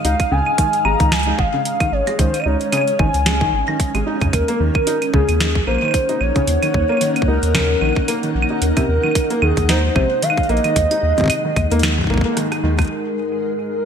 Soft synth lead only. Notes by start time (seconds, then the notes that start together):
0.05 F5
0.32 G#5
0.85 A#5
1.12 G#5
1.39 F5
1.92 C#5
2.19 C5
2.40 D#5
2.46 C#5
2.99 G#5
4.33 A#4
5.14 G#4
5.67 C5
6.21 C#5
7.28 A#4
8.62 A#4
9.42 G#4
9.69 C5
10.23 F5
10.49 D#5
12.90 A#4